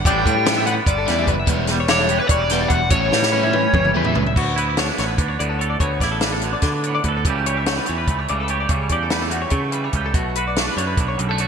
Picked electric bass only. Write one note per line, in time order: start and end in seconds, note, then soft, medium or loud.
0.05 0.23 A1 loud
0.26 0.79 A2 loud
0.87 1.05 G1 medium
1.09 1.26 E2 medium
1.27 1.45 F#1 medium
1.47 2.19 E1 loud
2.29 2.65 E1 medium
2.70 2.89 E1 medium
2.91 3.09 A1 loud
3.12 3.65 A2 medium
3.73 3.92 G1 medium
3.96 4.13 E2 medium
4.16 4.34 C#2 medium
4.36 4.90 D2 medium
4.99 5.17 A1 medium
5.18 5.37 D2 medium
5.40 5.76 D2 medium
5.80 5.99 D2 medium
6.00 6.54 A1 medium
6.63 6.99 D3 medium
7.05 7.26 D2 medium
7.25 7.79 C#2 medium
7.89 8.07 E2 medium
8.07 8.26 C#2 medium
8.30 8.65 C#2 medium
8.70 8.88 C#2 medium
8.90 9.44 E2 medium
9.51 9.88 C#3 medium
9.93 10.14 C#2 medium
10.14 10.68 B1 medium
10.77 10.95 F#2 medium
10.97 11.16 B1 medium
11.19 11.48 B1 medium